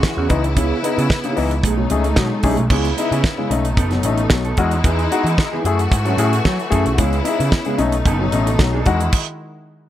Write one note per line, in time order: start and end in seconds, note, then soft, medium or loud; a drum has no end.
0.00 1.59 C#3 medium
0.00 0.17 E3 medium
0.00 0.28 G#3 medium
0.00 0.28 F#4 medium
0.00 kick medium
0.00 snare loud
0.05 muted clean electric guitar stroke soft
0.17 0.27 E2 loud
0.17 0.29 C#4 medium
0.17 0.29 F#4 medium
0.17 0.30 G#4 medium
0.29 0.70 C#2 loud
0.29 0.43 E3 medium
0.29 0.42 B3 medium
0.29 1.62 B3 medium
0.29 0.42 D#4 medium
0.29 1.62 E4 medium
0.29 muted clean electric guitar stroke soft
0.29 kick medium
0.29 closed hi-hat medium
0.43 0.49 B3 soft
0.43 0.49 D#4 soft
0.43 muted clean electric guitar stroke soft
0.43 closed hi-hat soft
0.55 0.70 C#3 medium
0.55 0.75 B3 medium
0.55 0.76 E4 medium
0.55 0.76 G#4 medium
0.55 kick medium
0.55 closed hi-hat medium
0.82 0.97 B3 medium
0.82 0.97 D#4 medium
0.82 0.97 E4 medium
0.82 0.95 G#4 medium
0.82 closed hi-hat medium
0.97 1.07 C#3 medium
0.97 1.08 B3 soft
0.97 1.09 E4 medium
0.97 1.09 G#4 medium
0.97 closed hi-hat soft
1.10 1.16 B3 soft
1.10 1.16 D#4 soft
1.10 muted clean electric guitar stroke soft
1.10 kick loud
1.10 snare loud
1.24 1.37 C#3 medium
1.24 1.36 B3 medium
1.24 1.37 E4 medium
1.24 1.37 G#4 medium
1.24 closed hi-hat soft
1.36 1.64 C#2 medium
1.36 1.50 E3 medium
1.36 1.50 B3 medium
1.36 1.50 D#4 medium
1.36 muted clean electric guitar stroke soft
1.36 open hi-hat medium
1.51 muted clean electric guitar stroke soft
1.51 closed hi-hat soft
1.63 1.84 B1 loud
1.63 2.69 C#3 medium
1.63 2.70 G#3 medium
1.63 1.83 A3 medium
1.63 2.70 A3 medium
1.63 1.69 D#4 soft
1.63 1.78 D#4 loud
1.63 2.70 D#4 medium
1.63 1.69 G#4 soft
1.63 1.77 G#4 medium
1.63 kick loud
1.63 closed hi-hat medium
1.77 1.90 B2 medium
1.77 1.90 F#3 medium
1.77 muted clean electric guitar stroke soft
1.90 2.11 C#2 medium
1.90 2.04 A3 medium
1.90 2.04 C#4 medium
1.90 2.04 D#4 medium
1.90 2.05 G#4 medium
1.90 muted clean electric guitar stroke soft
1.90 closed hi-hat medium
2.04 2.17 A3 soft
2.04 2.18 D#4 soft
2.04 2.19 G#4 medium
2.04 closed hi-hat soft
2.16 2.28 B2 loud
2.16 2.31 B2 medium
2.16 2.31 F#3 medium
2.16 muted clean electric guitar stroke soft
2.16 kick loud
2.16 snare loud
2.32 muted clean electric guitar stroke soft
2.43 2.54 B1 medium
2.43 2.64 A3 medium
2.43 2.57 A3 medium
2.43 2.57 C#4 medium
2.43 2.56 D#4 medium
2.43 2.59 D#4 medium
2.43 2.56 G#4 medium
2.43 2.57 G#4 medium
2.43 kick medium
2.43 open hi-hat medium
2.57 2.68 B1 medium
2.57 2.63 D#4 soft
2.57 2.63 G#4 soft
2.57 muted clean electric guitar stroke soft
2.57 closed hi-hat soft
2.70 2.90 C#2 medium
2.70 3.50 C#3 medium
2.70 2.85 C#3 medium
2.70 2.85 G#3 medium
2.70 2.90 B3 medium
2.70 3.50 B3 medium
2.70 3.50 E4 medium
2.70 2.90 E4 medium
2.70 2.91 G#4 medium
2.70 kick loud
2.70 crash medium
2.85 closed hi-hat soft
2.97 3.12 B3 medium
2.97 3.11 D#4 medium
2.97 3.11 E4 medium
2.97 3.10 G#4 medium
2.97 closed hi-hat medium
3.11 3.21 C#3 medium
3.11 3.23 B3 soft
3.11 3.24 E4 soft
3.11 3.25 G#4 medium
3.11 closed hi-hat soft
3.24 3.30 D#4 soft
3.24 3.30 E4 soft
3.24 muted clean electric guitar stroke soft
3.24 kick loud
3.24 snare loud
3.38 3.50 C#3 medium
3.38 3.50 G#3 medium
3.38 3.50 B3 medium
3.38 3.50 E4 medium
3.38 3.51 G#4 medium
3.50 3.77 B1 medium
3.50 4.57 B2 medium
3.50 3.64 A3 medium
3.50 4.57 A3 medium
3.50 3.64 C#4 medium
3.50 4.57 D#4 medium
3.50 3.65 D#4 medium
3.50 muted clean electric guitar stroke soft
3.50 closed hi-hat medium
3.65 muted clean electric guitar stroke soft
3.65 closed hi-hat soft
3.77 3.97 F#1 loud
3.77 3.97 B3 medium
3.77 3.84 C#4 soft
3.77 3.92 D#4 loud
3.77 3.84 D#4 soft
3.77 3.91 A4 loud
3.77 kick loud
3.77 closed hi-hat medium
3.91 4.04 B2 medium
3.91 4.04 F#3 medium
3.91 muted clean electric guitar stroke soft
3.91 snare soft
3.91 closed hi-hat soft
4.03 4.24 A1 medium
4.03 4.18 A3 medium
4.03 4.18 C#4 medium
4.03 4.19 D#4 medium
4.03 muted clean electric guitar stroke soft
4.03 closed hi-hat medium
4.18 4.30 B3 soft
4.18 4.30 D#4 medium
4.18 4.31 A4 medium
4.18 closed hi-hat soft
4.30 4.51 B1 medium
4.30 4.45 B2 medium
4.30 4.45 F#3 medium
4.30 muted clean electric guitar stroke soft
4.30 kick loud
4.30 snare loud
4.45 4.57 B3 medium
4.45 4.58 D#4 medium
4.45 4.59 A4 medium
4.45 closed hi-hat soft
4.57 4.78 E2 loud
4.57 4.72 G#3 medium
4.57 5.64 G#3 medium
4.57 5.64 D#4 medium
4.57 4.72 D#4 medium
4.57 5.64 E4 medium
4.57 4.72 F#4 medium
4.57 muted clean electric guitar stroke soft
4.57 kick medium
4.57 closed hi-hat medium
4.71 4.78 D#4 soft
4.71 4.78 F#4 soft
4.71 muted clean electric guitar stroke soft
4.71 closed hi-hat soft
4.84 5.05 E2 medium
4.84 4.99 E3 medium
4.84 5.04 B3 medium
4.84 5.05 D#4 medium
4.84 5.05 G#4 medium
4.84 kick loud
4.84 closed hi-hat medium
4.99 closed hi-hat soft
5.11 5.26 B3 medium
5.11 5.25 D#4 medium
5.11 5.26 F#4 medium
5.11 5.24 G#4 medium
5.11 closed hi-hat medium
5.24 5.34 E3 medium
5.24 5.36 B3 soft
5.24 5.38 D#4 medium
5.24 5.38 G#4 soft
5.24 closed hi-hat soft
5.38 5.44 D#4 soft
5.38 5.44 F#4 soft
5.38 muted clean electric guitar stroke soft
5.38 kick loud
5.38 snare loud
5.52 5.65 E3 medium
5.52 5.64 B3 medium
5.52 5.64 D#4 medium
5.52 5.65 G#4 medium
5.64 5.85 F#2 loud
5.64 6.97 E3 medium
5.64 6.98 A3 medium
5.64 5.79 A3 medium
5.64 5.79 E4 medium
5.64 6.98 F#4 medium
5.64 5.79 G#4 medium
5.64 muted clean electric guitar stroke soft
5.64 closed hi-hat medium
5.78 muted clean electric guitar stroke soft
5.78 closed hi-hat soft
5.91 6.12 G#2 medium
5.91 5.98 E4 soft
5.91 5.98 G#4 soft
5.91 muted clean electric guitar stroke medium
5.91 kick loud
5.91 closed hi-hat medium
6.05 6.18 F#3 medium
6.05 6.16 C#4 medium
6.05 6.17 E4 medium
6.05 6.18 A4 medium
6.05 closed hi-hat soft
6.17 6.38 A2 medium
6.17 6.32 A3 medium
6.17 6.33 C#4 soft
6.17 6.31 E4 medium
6.17 6.32 E4 medium
6.17 6.32 G#4 medium
6.17 6.30 A4 medium
6.17 closed hi-hat medium
6.31 muted clean electric guitar stroke soft
6.31 closed hi-hat soft
6.44 6.59 F#3 medium
6.44 6.56 F#3 loud
6.44 kick loud
6.44 snare loud
6.58 muted clean electric guitar stroke soft
6.58 closed hi-hat soft
6.70 6.83 F#2 medium
6.70 6.85 A3 medium
6.70 6.91 C#4 medium
6.70 6.84 E4 medium
6.70 6.86 E4 medium
6.70 6.84 G#4 medium
6.70 6.84 A4 medium
6.70 kick medium
6.70 closed hi-hat medium
6.86 6.96 B1 medium
6.86 6.91 E4 soft
6.86 6.91 G#4 soft
6.86 muted clean electric guitar stroke soft
6.86 closed hi-hat soft
6.98 7.18 C#2 loud
6.98 7.12 C#3 medium
6.98 7.79 C#3 medium
6.98 7.12 G#3 medium
6.98 7.19 B3 medium
6.98 7.79 B3 medium
6.98 7.79 E4 medium
6.98 7.19 E4 medium
6.98 7.20 G#4 medium
6.98 kick loud
6.98 closed hi-hat medium
7.13 closed hi-hat soft
7.24 7.41 B3 medium
7.24 7.39 D#4 medium
7.24 7.39 E4 medium
7.24 7.40 E4 medium
7.24 closed hi-hat medium
7.28 7.39 G#4 medium
7.40 7.49 C#3 medium
7.40 7.53 B3 soft
7.40 7.53 E4 medium
7.40 7.53 G#4 medium
7.40 closed hi-hat soft
7.51 7.58 D#4 soft
7.51 7.58 E4 soft
7.51 muted clean electric guitar stroke soft
7.51 kick loud
7.51 snare loud
7.65 7.78 C#3 medium
7.65 7.78 G#3 medium
7.65 7.78 B3 medium
7.65 7.80 E4 medium
7.65 7.80 G#4 medium
7.65 closed hi-hat soft
7.78 7.99 B1 loud
7.78 8.86 B2 medium
7.78 7.93 A3 medium
7.78 8.86 A3 medium
7.78 7.93 C#4 medium
7.78 7.93 D#4 medium
7.78 8.85 D#4 medium
7.78 muted clean electric guitar stroke soft
7.78 closed hi-hat medium
7.92 muted clean electric guitar stroke medium
7.92 closed hi-hat soft
8.05 8.26 F#1 loud
8.05 8.26 B3 loud
8.05 8.12 C#4 soft
8.05 8.12 D#4 soft
8.05 8.21 D#4 loud
8.05 8.19 A4 loud
8.05 kick loud
8.05 closed hi-hat medium
8.21 8.33 B2 medium
8.21 8.33 F#3 medium
8.21 muted clean electric guitar stroke soft
8.32 8.53 A1 medium
8.32 8.47 A3 medium
8.32 8.47 C#4 medium
8.32 8.47 D#4 medium
8.32 muted clean electric guitar stroke soft
8.32 closed hi-hat medium
8.47 8.59 B3 soft
8.47 8.59 D#4 medium
8.47 8.60 A4 medium
8.47 closed hi-hat soft
8.59 8.80 B1 medium
8.59 8.74 B2 medium
8.59 8.74 F#3 medium
8.59 muted clean electric guitar stroke soft
8.59 kick loud
8.59 snare loud
8.73 8.86 B3 medium
8.73 8.86 D#4 medium
8.73 8.88 A4 medium
8.86 9.07 E2 medium
8.86 9.13 D#3 medium
8.86 9.00 G#3 medium
8.86 9.14 G#3 medium
8.86 9.00 D#4 medium
8.86 9.13 E4 medium
8.86 9.00 F#4 medium
8.86 muted clean electric guitar stroke soft
8.86 kick medium
8.86 closed hi-hat medium
9.00 9.06 D#4 soft
9.00 9.06 F#4 soft
9.00 muted clean electric guitar stroke soft
9.00 closed hi-hat soft
9.12 kick loud
9.12 crash medium